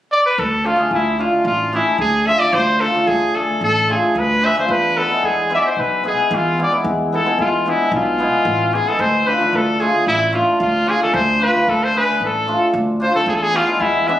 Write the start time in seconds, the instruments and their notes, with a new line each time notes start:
0.12 cornet D5
0.26 cornet B4
0.38 upright bass D2, cornet A4
0.64 hammered dulcimer D4 F4, cornet F4
0.76 hammered dulcimer A3 D4 G#4
0.91 upright bass D2, cornet E4
1.18 hammered dulcimer A3 D4 F4, cornet F4
1.45 upright bass A1, cornet F4
1.73 hammered dulcimer A3 D4 G#4, cornet E4
1.98 upright bass D2, cornet G#4
2.27 hammered dulcimer D4 F4, cornet E5
2.39 hammered dulcimer A3 D4 F4, cornet D5
2.53 upright bass D2, cornet C5
2.80 hammered dulcimer D4 F4, cornet A4
2.94 hammered dulcimer A3 D4 F4
3.07 upright bass D2, cornet G#4
3.35 hammered dulcimer A3 D4 G#4, cornet A4
3.61 upright bass A1, cornet A4
3.88 hammered dulcimer A3 D4 F4, cornet G#4
4.15 upright bass D2, cornet B4
4.41 hammered dulcimer D4 G#4, cornet E5
4.57 hammered dulcimer A3 D4 F4, cornet C5
4.69 upright bass E2, cornet B4
4.97 hammered dulcimer B3 E4, cornet A4
5.09 hammered dulcimer G#3 B3 E4
5.23 upright bass E2, cornet G#4
5.49 hammered dulcimer G#3 B3 E4
5.54 cornet D5 E5
5.61 cornet E5
5.66 cornet C5
5.76 upright bass B1, cornet B4
6.03 hammered dulcimer G#3 B3 E4, cornet G#4
6.31 upright bass E2
6.35 cornet F4
6.58 hammered dulcimer B3 E4
6.62 cornet D5
6.71 hammered dulcimer G#3 B3 E4
6.84 upright bass E2
7.12 hammered dulcimer B3 E4, cornet A4
7.25 hammered dulcimer G#3 B3 E4
7.39 upright bass E2, cornet F4
7.66 hammered dulcimer G#3 B3 D4, cornet E4
7.92 upright bass B1, cornet F4
8.18 hammered dulcimer G#3 B3 E4
8.45 upright bass A1
8.73 hammered dulcimer B3 E4, cornet G#4
8.86 hammered dulcimer G#3 B3 E4, cornet A4
8.99 upright bass D2, cornet C5
9.27 hammered dulcimer D4 F4, cornet B4
9.39 hammered dulcimer A3 D4 F4
9.53 upright bass D2, cornet A4
9.80 hammered dulcimer A3 D4 F4, cornet G#4
10.06 upright bass A1, cornet E4
10.33 hammered dulcimer A3 D4 F4, cornet F4
10.60 upright bass D2, cornet F4
10.86 hammered dulcimer D4 F4, cornet G#4
11.00 hammered dulcimer A3 D4 G#4, cornet A4
11.14 upright bass D2, cornet C5
11.40 hammered dulcimer D4 F4, cornet B4
11.53 hammered dulcimer A3 D4 F4
11.67 upright bass D2, cornet A4
11.84 cornet C5
11.94 hammered dulcimer A3 D4 G#4, cornet B4
12.21 upright bass A1
12.25 cornet A4
12.47 hammered dulcimer A3 D4 F4
12.73 upright bass D2
13.00 hammered dulcimer D4 F4, cornet C5
13.14 hammered dulcimer A3 D4 E4, cornet A4
13.26 upright bass E2, cornet G#4
13.36 cornet A4
13.43 cornet G#4
13.53 hammered dulcimer B3 E4, cornet F4
13.67 hammered dulcimer G#3 B3 E4
13.80 upright bass E2, cornet E4
14.07 hammered dulcimer G#3 B3 D4, cornet E5